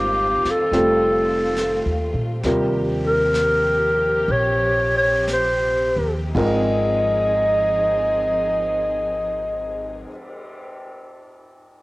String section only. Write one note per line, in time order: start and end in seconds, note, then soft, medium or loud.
0.00 2.40 D#3 medium
0.00 2.40 C4 medium
0.00 2.40 F4 medium
0.72 2.41 A3 medium
2.43 6.31 C3 medium
2.43 6.31 F3 medium
2.43 6.31 G4 medium
6.36 10.04 F3 medium
6.36 10.05 C4 medium
6.36 10.05 D#4 medium
6.36 10.05 G#4 medium